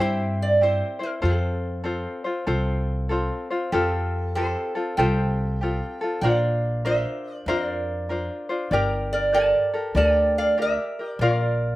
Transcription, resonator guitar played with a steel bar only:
0.01 0.41 E5 medium
0.42 0.63 D5 medium
0.63 0.99 C5 medium
1.03 1.09 A#4 medium
1.25 3.07 A4 medium
3.72 4.31 F4 medium
3.72 4.35 A4 medium
4.35 4.94 A4 medium
4.35 4.97 C5 medium
4.97 6.19 C5 medium
4.97 6.21 G5 medium
6.21 6.81 D5 medium
6.21 6.85 F5 medium
6.85 7.44 C5 medium
6.85 7.33 E5 medium
7.33 7.48 D5 medium
7.48 8.46 A#4 medium
7.48 8.45 D5 medium
8.73 9.09 G4 medium
8.73 9.13 A#4 medium
9.13 9.33 A#4 medium
9.13 9.35 D5 medium
9.34 9.92 D5 medium
9.34 9.97 A5 loud
9.97 10.33 D5 medium
9.97 10.37 G5 loud
10.38 10.57 D5 medium
10.38 10.60 F5 medium
10.62 11.18 A#4 medium
10.62 11.09 E5 medium
11.09 11.21 D5 medium
11.21 11.76 A#4 medium
11.21 11.76 D5 medium

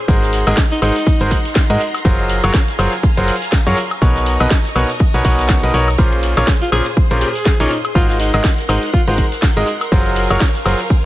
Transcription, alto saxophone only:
0.47 0.57 G#4 medium
0.71 0.80 D#4 medium
0.82 1.21 D#4 loud
6.62 6.70 F4 medium
6.72 6.86 G#4 medium
7.21 7.59 G#4 medium
7.60 7.67 D#4 medium
7.70 7.80 D#4 medium
7.95 8.04 F4 medium
8.09 8.16 F4 medium
8.20 8.33 D#4 medium
8.69 8.91 D#4 loud
8.93 9.02 F4 medium
9.08 9.14 F4 medium

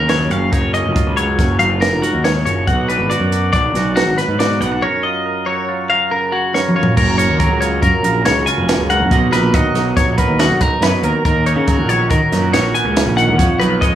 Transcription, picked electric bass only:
0.00 0.27 D#2 medium
0.30 0.50 F#1 medium
0.53 0.82 F#1 medium
0.84 0.94 F1 medium
1.07 1.36 C#2 medium
1.39 1.58 F#1 medium
1.60 1.92 F#1 medium
1.92 2.02 F1 medium
2.14 2.43 D#2 medium
2.45 2.65 F#1 medium
2.68 2.97 B1 medium
2.99 3.09 G#1 medium
3.20 3.50 F#2 medium
3.53 3.73 B1 medium
3.74 4.06 B1 medium
4.06 4.16 G#1 medium
4.28 4.58 G#2 medium
4.60 4.80 B1 medium
6.97 7.26 F#1 medium
7.29 7.50 D#2 medium
7.50 7.79 C#2 medium
7.82 7.92 F#2 loud
8.03 8.23 A#1 medium
8.25 8.44 C#2 medium
8.58 8.77 F1 medium
8.78 9.02 C#2 medium
9.00 9.10 F#1 medium
9.11 9.30 B1 loud
9.32 9.51 A#1 medium
9.54 9.63 D#2 medium
9.74 9.94 B1 medium
10.06 10.16 A#1 medium
10.28 10.47 D#2 medium
10.49 10.69 B1 medium
10.81 10.91 F#2 medium
11.03 11.12 D#2 loud
11.25 11.54 D#2 medium
11.56 11.79 C#3 medium
11.78 12.07 A#1 medium
12.11 12.20 D#3 medium
12.32 12.51 F#2 medium
12.53 12.72 A#1 medium
12.85 13.04 C#2 medium
13.06 13.29 A#1 medium
13.27 13.37 D#2 medium
13.39 13.58 F2 loud
13.61 13.80 B1 medium
13.82 13.91 F2 medium

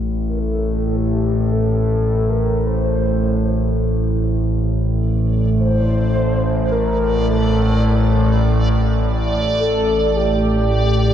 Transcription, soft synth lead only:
0.29 0.41 A#4 medium
0.39 0.87 A4 medium
0.87 0.98 A4 soft
0.97 1.53 G4 medium
1.52 2.31 A4 medium
2.29 2.68 A#4 medium
2.66 3.82 C5 loud
5.58 6.68 C5 loud
6.72 7.25 A#4 medium
7.29 8.40 A4 medium
9.60 10.18 A4 loud
10.16 11.14 G4 loud

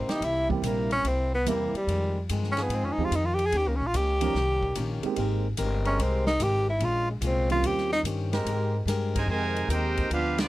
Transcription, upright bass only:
0.08 muted upright bass stroke soft
0.21 0.61 C2 medium
0.62 1.03 A#1 medium
1.04 1.45 C2 medium
1.46 1.72 E2 medium
1.73 muted upright bass stroke soft
1.87 2.27 F2 medium
2.30 2.68 G2 medium
2.69 2.84 G#2 medium
2.84 2.97 F2 medium
2.98 3.10 D#2 medium
3.11 3.51 F2 loud
3.52 3.67 D#2 medium
3.67 3.79 C#2 medium
3.80 3.93 A#1 medium
3.94 4.34 C#2 medium
4.34 4.75 C2 medium
4.76 5.02 A#1 medium
5.04 muted upright bass stroke soft
5.17 5.57 G#1 medium
5.58 5.98 G1 loud
5.98 6.39 C2 loud
6.39 6.79 G#1 loud
6.79 7.20 A#1 medium
7.21 7.62 C2 loud
7.62 8.03 D#2 medium
8.03 8.44 G2 loud
8.45 8.85 G#2 medium
8.86 9.27 G2 loud
9.27 9.68 F2 loud
9.68 10.09 D#2 loud
10.10 10.48 D2 medium

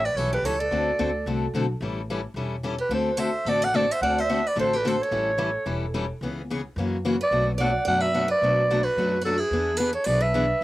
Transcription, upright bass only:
0.00 0.12 A1 medium
0.15 0.39 B1 medium
0.42 0.66 C#2 medium
0.71 0.93 D2 medium
1.00 1.23 D2 medium
1.26 1.50 C2 medium
1.53 1.77 B1 medium
1.81 2.25 A1 medium
2.34 2.79 E1 medium
2.89 3.34 D2 medium
3.45 3.90 A1 medium
4.01 4.45 D2 medium
4.56 5.00 A1 medium
5.11 5.55 A1 medium
5.66 6.10 E1 medium
6.21 6.65 C#2 medium
6.76 7.20 F#2 medium
7.31 7.75 B1 medium
7.86 8.31 F#2 medium
8.42 8.86 B1 medium
8.96 9.40 F#2 medium
9.51 9.95 E2 medium
10.06 10.50 B1 medium

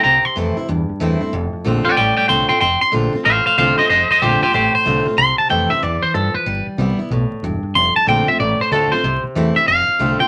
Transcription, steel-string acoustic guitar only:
0.04 0.66 C3 medium
0.36 0.56 E3 medium
0.36 0.56 A3 loud
0.36 0.57 C4 medium
0.36 0.56 E4 loud
0.57 0.69 C4 soft
0.57 0.68 E4 medium
0.69 1.31 G2 medium
1.00 1.20 E3 medium
1.00 1.20 A3 medium
1.00 1.21 C4 medium
1.00 1.19 E4 loud
1.21 1.33 C4 soft
1.21 1.32 E4 medium
1.33 1.95 F2 medium
1.64 1.84 D3 medium
1.64 1.85 A3 medium
1.64 1.85 C4 loud
1.64 1.84 F4 loud
1.85 1.98 C4 soft
1.85 1.96 F4 medium
1.97 2.59 A2 medium
2.28 2.48 D3 medium
2.28 2.49 A3 loud
2.28 2.49 C4 medium
2.28 2.47 F4 loud
2.49 2.62 C4 soft
2.49 2.60 F4 medium
2.61 3.23 F2 medium
2.92 3.12 D3 medium
2.92 3.13 A3 medium
2.92 3.13 C4 loud
2.92 3.12 F4 loud
3.13 3.26 C4 medium
3.13 3.25 F4 medium
3.26 3.88 A2 medium
3.57 3.77 D3 medium
3.57 3.78 A3 medium
3.57 3.78 C4 loud
3.57 3.77 F4 loud
3.78 3.90 C4 medium
3.78 3.89 F4 medium
3.90 4.52 F2 medium
4.22 4.41 D3 medium
4.22 4.42 A3 loud
4.22 4.42 C4 medium
4.22 4.41 F4 loud
4.42 4.55 C4 medium
4.42 4.54 F4 medium
4.54 5.16 A2 medium
4.85 5.05 D3 medium
4.85 5.06 A3 medium
4.85 5.06 C4 medium
4.85 5.04 F4 medium
5.05 5.19 C4 medium
5.05 5.17 F4 medium
5.18 5.80 C3 medium
5.49 5.69 E3 medium
5.49 5.70 A3 medium
5.49 5.70 C4 medium
5.49 5.68 E4 medium
5.70 5.83 C4 soft
5.70 5.82 E4 medium
5.83 6.14 E3 medium
6.15 6.46 F3 medium
6.46 6.77 G3 medium
6.78 6.98 G3 medium
6.78 6.99 B3 medium
6.78 6.98 E4 medium
6.99 7.12 B3 medium
6.99 7.10 E4 medium
7.11 7.42 A2 medium
7.44 7.74 G2 medium
7.75 8.37 F2 medium
8.07 8.26 D3 medium
8.07 8.27 A3 medium
8.07 8.27 C4 loud
8.07 8.26 F4 medium
8.28 8.40 C4 medium
8.28 8.39 F4 medium
8.40 9.02 A2 medium
8.72 8.91 D3 medium
8.72 8.92 A3 medium
8.72 8.92 C4 loud
8.72 8.90 F4 loud
8.92 9.04 C4 medium
8.92 9.03 F4 medium
9.04 9.66 C3 medium
9.35 9.55 E3 medium
9.35 9.55 A3 loud
9.35 9.56 C4 loud
9.35 9.55 E4 medium
9.56 9.67 E4 medium
9.68 10.28 F2 medium
9.99 10.19 D3 medium
9.99 10.19 A3 loud
9.99 10.20 C4 loud
9.99 10.18 F4 loud
10.19 10.28 C4 medium
10.19 10.28 F4 medium

